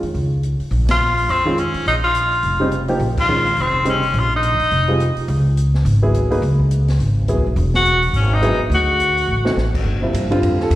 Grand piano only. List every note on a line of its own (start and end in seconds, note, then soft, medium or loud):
1.45 1.56 D#3 medium
1.45 1.56 G#3 medium
1.45 1.57 C#4 medium
1.45 1.57 F4 medium
2.60 2.71 C#3 medium
2.60 2.71 G3 medium
2.60 2.71 C4 medium
2.60 2.71 D#4 medium
2.88 2.99 F3 medium
2.88 2.99 A#3 medium
2.88 2.99 D#4 medium
2.88 2.99 G4 medium
3.29 3.44 D#3 medium
3.29 3.44 G#3 medium
3.29 3.44 C#4 medium
3.29 3.44 F4 medium
3.85 4.01 C#3 medium
3.85 4.01 G3 medium
3.85 4.01 C4 medium
3.85 4.01 D#4 medium
4.88 4.99 G3 medium
4.88 4.99 C4 medium
4.88 4.99 F4 medium
4.88 4.99 G#4 medium
6.02 6.29 F#3 medium
6.02 6.29 B3 medium
6.02 6.30 E4 medium
6.02 6.30 G#4 medium
6.31 6.41 A#3 medium
6.31 6.41 D#4 medium
6.31 6.41 G#4 medium
6.31 6.42 B4 medium
7.28 7.44 F#3 medium
7.28 7.44 B3 medium
7.28 7.44 E4 medium
7.28 7.44 G#4 medium
8.42 8.58 F#3 medium
8.42 8.58 B3 medium
8.42 8.58 E4 medium
8.42 8.58 G#4 medium
9.45 9.55 A3 medium
9.45 9.56 C4 medium
9.45 9.56 D#4 medium
9.45 9.56 F#4 medium
10.02 10.29 C3 medium
10.02 10.29 F3 medium
10.02 10.30 A#3 soft
10.02 10.30 E4 medium
10.31 10.69 D3 medium
10.31 10.69 G3 medium
10.31 10.69 C4 medium
10.31 10.70 F4 medium
10.63 10.73 A4 medium